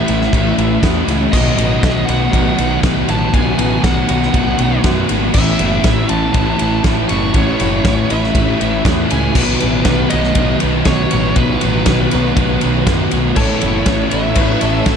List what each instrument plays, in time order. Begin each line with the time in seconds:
Already playing: distorted electric guitar A2, overdriven electric guitar E3, lead electric guitar E5
0.06 picked electric bass A1, overdriven electric guitar A3 C#4 E4, ride
0.10 distorted electric guitar E3
0.21 snare
0.31 picked electric bass A1, overdriven electric guitar A2 E3 A3 C#4 E4, kick, ride
0.57 picked electric bass A1, distorted electric guitar E3, overdriven electric guitar A3 C#4 E4, ride
0.81 picked electric bass E2, distorted electric guitar A2, overdriven electric guitar E3 A3 C#4, kick, snare, ride
0.86 overdriven electric guitar E4
1.07 picked electric bass C#2, distorted electric guitar E3, overdriven electric guitar A3 C#4 E4, ride
1.32 picked electric bass B1, overdriven electric guitar B2 D#3 A3 B3 F#4, distorted electric guitar F#3, lead electric guitar D#5, kick, crash
1.57 picked electric bass A1, distorted electric guitar F#3, overdriven electric guitar A3 B3 F#4, ride
1.82 picked electric bass B1, distorted electric guitar B2 F#3, overdriven electric guitar D#3 A3 B3, kick, snare, ride
1.86 overdriven electric guitar F#4
2.05 picked electric bass B1, overdriven electric guitar F#4, lead electric guitar F#5, ride
2.10 distorted electric guitar F#3, overdriven electric guitar A3 B3
2.33 picked electric bass B1, overdriven electric guitar B2 D#3 A3 B3 F#4, distorted electric guitar F#3, kick, ride
2.58 picked electric bass B1, distorted electric guitar F#3, overdriven electric guitar A3 B3 F#4, ride
2.81 picked electric bass B1, distorted electric guitar B2 F#3, overdriven electric guitar D#3 A3, kick, snare, ride
2.86 overdriven electric guitar B3 F#4
3.08 picked electric bass A1, distorted electric guitar F#3, overdriven electric guitar A3 B3 F#4, lead electric guitar A5, ride
3.32 picked electric bass B1, overdriven electric guitar B2 D#3 A3 B3 F#4, distorted electric guitar F#3, lead electric guitar G#5, kick, ride
3.57 picked electric bass A1, distorted electric guitar F#3, overdriven electric guitar A3 B3 F#4, ride
3.81 picked electric bass B1, distorted electric guitar B2 F#3, overdriven electric guitar D#3 A3 B3 F#4, lead electric guitar F#5, kick, snare, ride
4.08 picked electric bass B1, distorted electric guitar F#3, overdriven electric guitar A3 B3 F#4, ride
4.22 snare
4.32 picked electric bass B1, overdriven electric guitar B2 D#3 A3 B3 F#4, distorted electric guitar F#3, kick, ride
4.57 picked electric bass B1, distorted electric guitar F#3, overdriven electric guitar A3 B3 F#4, ride
4.82 picked electric bass F#2, distorted electric guitar B2 F#3, overdriven electric guitar D#3 A3 B3, kick, snare, ride
4.86 overdriven electric guitar F#4
5.09 picked electric bass G#1, distorted electric guitar F#3, overdriven electric guitar A3 B3 F#4, ride
5.34 picked electric bass A1, overdriven electric guitar A2 E3 A3 C#4 E4, lead electric guitar E5, kick, crash
5.58 picked electric bass F#1, distorted electric guitar E3 A3, overdriven electric guitar C#4 E4, ride
5.63 overdriven electric guitar A3
5.83 picked electric bass A1, distorted electric guitar A2, overdriven electric guitar E3 A3 C#4 E4, kick, snare, ride
6.09 picked electric bass A1, distorted electric guitar E3, overdriven electric guitar A3 C#4 E4, lead electric guitar A5, ride
6.34 picked electric bass A1, overdriven electric guitar A2 E3 A3 C#4 E4, kick, ride
6.57 picked electric bass A1, distorted electric guitar E3 A3, overdriven electric guitar C#4 E4, ride
6.62 overdriven electric guitar A3
6.83 picked electric bass A1, distorted electric guitar A2, overdriven electric guitar E3 A3 C#4, kick, snare, ride
6.87 overdriven electric guitar E4
7.08 picked electric bass F#1, distorted electric guitar E3 A3, overdriven electric guitar C#4 E4, lead electric guitar C#6, ride
7.13 overdriven electric guitar A3
7.34 picked electric bass A1, overdriven electric guitar A2 E3 A3 C#4 E4, lead electric guitar C#5, kick, ride
7.60 picked electric bass F#1, distorted electric guitar E3, overdriven electric guitar A3 C#4 E4, ride
7.84 picked electric bass A1, distorted electric guitar A2, overdriven electric guitar E3 A3 C#4 E4, kick, snare, ride
8.09 picked electric bass A1, overdriven electric guitar A3 C#4 E4, lead electric guitar E5, ride
8.13 distorted electric guitar E3
8.23 snare
8.34 picked electric bass A1, overdriven electric guitar A2 E3 A3 C#4 E4, kick, ride
8.59 picked electric bass A1, distorted electric guitar E3, overdriven electric guitar A3 C#4 E4, ride
8.83 picked electric bass E2, distorted electric guitar A2, overdriven electric guitar E3 A3 C#4 E4, kick, snare, ride
9.08 picked electric bass C#2, overdriven electric guitar A3 C#4 E4, lead electric guitar G#5, ride
9.13 distorted electric guitar E3
9.34 picked electric bass B1, overdriven electric guitar B2 D#3 A3 B3 F#4, distorted electric guitar F#3, lead electric guitar B4, kick, crash
9.59 picked electric bass A1, overdriven electric guitar A3 B3 F#4, ride
9.63 distorted electric guitar F#3
9.84 picked electric bass B1, distorted electric guitar B2 F#3, overdriven electric guitar D#3 A3 B3 F#4, kick, snare, ride
10.08 overdriven electric guitar A3 B3 F#4, lead electric guitar D#5, ride
10.13 picked electric bass B1, distorted electric guitar F#3
10.24 snare
10.34 picked electric bass B1, overdriven electric guitar B2 D#3 A3 B3 F#4, distorted electric guitar F#3, kick, ride
10.60 picked electric bass B1, overdriven electric guitar A3 B3 F#4, ride
10.64 distorted electric guitar F#3
10.85 picked electric bass B1, distorted electric guitar B2 F#3, overdriven electric guitar D#3 A3 B3 F#4, lead electric guitar C#5, kick, snare, ride
11.11 picked electric bass A1, distorted electric guitar F#3, overdriven electric guitar A3 B3 F#4, ride
11.36 picked electric bass B1, overdriven electric guitar B2 D#3 A3 B3 F#4, distorted electric guitar F#3, lead electric guitar B4, kick, ride
11.61 picked electric bass A1, overdriven electric guitar A3 B3 F#4, ride
11.65 distorted electric guitar F#3
11.86 picked electric bass B1, distorted electric guitar B2 F#3, overdriven electric guitar D#3 A3 B3, kick, snare, ride
11.90 overdriven electric guitar F#4
12.11 picked electric bass B1, distorted electric guitar F#3, overdriven electric guitar A3 B3 F#4, ride
12.37 picked electric bass B1, overdriven electric guitar B2 D#3 A3 B3 F#4, distorted electric guitar F#3, kick, ride
12.61 picked electric bass B1, distorted electric guitar F#3, overdriven electric guitar A3 B3 F#4, ride
12.86 picked electric bass F#2, distorted electric guitar B2 F#3, overdriven electric guitar D#3 A3 B3 F#4, kick, snare, ride
13.11 picked electric bass B1, distorted electric guitar F#3, overdriven electric guitar A3 B3 F#4, ride
13.35 picked electric bass A1, overdriven electric guitar A2 E3 A3 C#4 E4, clean electric guitar A4, lead electric guitar C#5, string machine E6, kick, crash
13.40 string machine A4 C#5
13.61 picked electric bass F#1, distorted electric guitar E3, overdriven electric guitar A3 C#4 E4, ride
13.85 picked electric bass A1, distorted electric guitar A2, overdriven electric guitar E3 A3 C#4 E4, kick, snare, ride
14.10 picked electric bass A1, overdriven electric guitar A3 C#4 E4, lead electric guitar E5, ride
14.15 distorted electric guitar E3
14.35 picked electric bass A1, overdriven electric guitar A2 E3 A3 C#4 E4, clean electric guitar B4, kick, ride
14.61 picked electric bass A1, distorted electric guitar E3, overdriven electric guitar A3 C#4 E4, clean electric guitar A4, ride
14.86 picked electric bass A1, distorted electric guitar A2, overdriven electric guitar E3 A3 C#4 E4, kick, snare, ride